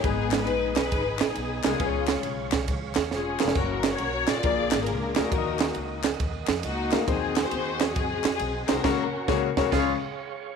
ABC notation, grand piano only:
X:1
M:4/4
L:1/8
Q:"Swing" 1/4=136
K:G#dor
V:1 name="Grand piano"
[G,B,DGB]3 z4 [G,B,DGA] | [G,CEGBc]3 z4 [G,CEGA] | [A,CFAc]3 z [A,=DEGA]2 z [A,DEGA] | [A,DFA=d^d]3 z4 [A,DFAe] |
[^B,DFG^B]3 z4 [B,DFGB] | [C,A,CFAc] z [C,A,CFAc] [C,A,CFAc] [C,G,CEGc] z3 |]
V:2 name="Grand piano" clef=bass
G,,3 z4 z | C,3 z4 z | z4 A,,3 z | D,3 z4 z |
D,3 z4 z | z8 |]